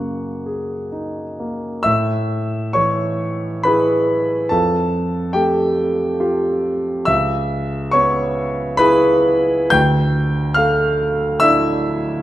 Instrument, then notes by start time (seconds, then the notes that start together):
grand piano
Already playing: F#2 C#3 A#3 F#5 C#6 F#6
0.46 G#4
0.92 D#4
1.40 A#3
1.83 A2 E5 E6
2.73 E3 C#5 C#6
3.63 E4 G#4 B4 B5
4.49 F2 A4 A5
5.33 A3 G4 G5
6.20 F4 G4
7.05 C#2 E5 E6
7.91 B3 C#5 C#6
8.77 E4 G#4 B4 B5
9.70 D2 G5 G6
10.54 A3 F5 F6
11.40 D4 E4 E5 E6